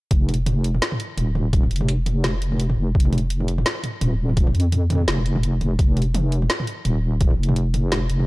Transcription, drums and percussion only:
0.11 kick, closed hi-hat
0.29 closed hi-hat, mid tom
0.34 closed hi-hat
0.46 closed hi-hat, mid tom
0.64 closed hi-hat
0.75 mid tom
0.82 snare, closed hi-hat
0.92 mid tom
1.00 closed hi-hat
1.18 closed hi-hat, mid tom
1.35 mid tom
1.53 kick, closed hi-hat
1.63 mid tom
1.71 closed hi-hat
1.76 closed hi-hat
1.81 mid tom
1.88 closed hi-hat
2.06 closed hi-hat, mid tom
2.24 snare, closed hi-hat, mid tom
2.42 closed hi-hat
2.52 mid tom
2.60 closed hi-hat
2.70 mid tom
2.95 kick
3.00 closed hi-hat
3.05 mid tom
3.13 closed hi-hat, mid tom
3.18 closed hi-hat
3.30 closed hi-hat
3.41 mid tom
3.48 closed hi-hat
3.58 mid tom
3.66 snare, closed hi-hat
3.84 closed hi-hat, mid tom
4.01 closed hi-hat, mid tom
4.29 mid tom
4.37 kick, closed hi-hat
4.47 mid tom
4.55 closed hi-hat
4.60 closed hi-hat
4.72 closed hi-hat, mid tom
4.90 closed hi-hat, mid tom
4.93 mid tom
4.95 mid tom
4.98 mid tom
5.00 mid tom
5.02 mid tom
5.04 snare, closed hi-hat, mid tom
5.18 mid tom
5.26 closed hi-hat
5.36 mid tom
5.43 closed hi-hat
5.61 closed hi-hat, mid tom
5.79 kick, closed hi-hat
5.97 closed hi-hat, mid tom
6.02 closed hi-hat
6.15 closed hi-hat, mid tom
6.32 closed hi-hat
6.42 mid tom
6.50 snare, closed hi-hat
6.60 mid tom
6.67 closed hi-hat
6.85 closed hi-hat, mid tom
7.21 kick, closed hi-hat
7.31 mid tom
7.43 closed hi-hat
7.49 mid tom
7.56 closed hi-hat
7.74 closed hi-hat, mid tom
7.92 snare, closed hi-hat, mid tom
8.10 closed hi-hat
8.20 mid tom

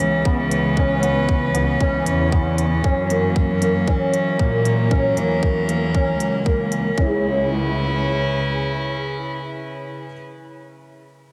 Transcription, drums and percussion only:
0.25 kick
0.51 closed hi-hat
0.77 kick
1.03 closed hi-hat
1.29 kick
1.55 closed hi-hat
1.81 kick
2.06 closed hi-hat
2.32 kick
2.58 closed hi-hat
2.84 kick
3.10 closed hi-hat
3.36 kick
3.62 closed hi-hat
3.88 kick
4.14 closed hi-hat
4.39 kick
4.65 closed hi-hat
4.91 kick
5.17 closed hi-hat
5.43 kick
5.69 closed hi-hat
5.95 kick
6.20 closed hi-hat
6.46 kick
6.72 closed hi-hat
6.98 kick

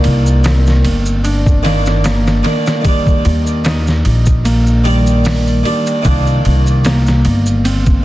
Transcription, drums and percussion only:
0.04 ride
0.27 maracas
0.44 snare, ride, maracas
0.67 snare, maracas
0.85 ride
1.06 maracas
1.24 ride, maracas
1.46 kick, maracas
1.65 snare, ride
1.86 snare, maracas
2.04 snare, ride, maracas
2.27 snare, maracas
2.44 snare, ride
2.66 snare, maracas
2.85 kick, ride, maracas
3.07 kick, maracas
3.25 ride
3.47 maracas
3.64 snare, ride, maracas
3.87 snare, maracas
4.05 ride
4.26 kick, maracas
4.45 ride, maracas
4.67 maracas
4.85 ride
5.07 maracas
5.24 snare, open hi-hat, maracas
5.47 maracas
5.65 ride
5.87 ride, maracas
6.05 kick, ride, maracas
6.27 maracas
6.45 ride
6.67 maracas
6.84 snare, ride, maracas
7.07 snare, maracas
7.25 ride
7.46 maracas
7.65 ride, maracas
7.86 kick, maracas

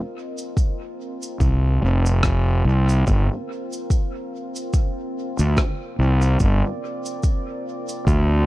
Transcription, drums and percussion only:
0.38 cabasa
0.57 kick, cabasa
1.23 cabasa
1.40 kick, cabasa
2.06 cabasa
2.23 kick, cross-stick, cabasa
2.89 cabasa
3.07 kick, cabasa
3.73 cabasa
3.90 kick, cabasa
4.56 cabasa
4.73 kick, cabasa
5.39 cabasa
5.57 kick, cross-stick, cabasa
6.21 cabasa
6.40 kick, cabasa
7.06 cabasa
7.23 kick, cabasa
7.89 cabasa
8.07 kick, cabasa

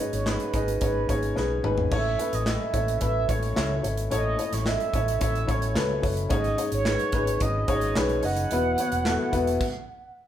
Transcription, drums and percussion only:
0.13 closed hi-hat
0.26 snare, clap
0.40 closed hi-hat
0.54 kick, closed hi-hat
0.68 closed hi-hat
0.81 kick, closed hi-hat
1.09 kick, closed hi-hat
1.23 closed hi-hat
1.37 snare
1.64 mid tom
1.78 floor tom
1.92 kick, splash
2.19 closed hi-hat
2.33 closed hi-hat
2.46 snare, clap
2.74 kick, closed hi-hat
2.88 closed hi-hat
3.01 kick, closed hi-hat
3.29 kick, closed hi-hat
3.43 closed hi-hat
3.56 snare, clap
3.84 closed hi-hat
3.97 closed hi-hat
4.11 closed hi-hat
4.39 closed hi-hat
4.53 snare, closed hi-hat
4.66 snare, clap
4.80 closed hi-hat
4.94 kick, closed hi-hat
5.08 closed hi-hat
5.21 kick, closed hi-hat
5.35 closed hi-hat
5.49 kick, closed hi-hat
5.62 closed hi-hat
5.75 snare, clap
6.03 kick, open hi-hat
6.17 closed hi-hat
6.30 kick, closed hi-hat
6.44 closed hi-hat
6.58 closed hi-hat
6.72 closed hi-hat
6.85 snare, clap
6.99 closed hi-hat
7.12 kick, closed hi-hat
7.27 closed hi-hat
7.40 kick, closed hi-hat
7.68 kick, closed hi-hat
7.81 closed hi-hat
7.95 snare, clap
8.09 closed hi-hat
8.23 open hi-hat
8.37 closed hi-hat
8.51 closed hi-hat
8.78 closed hi-hat
8.92 closed hi-hat
9.05 snare, clap
9.33 kick, closed hi-hat
9.47 closed hi-hat
9.61 kick, crash

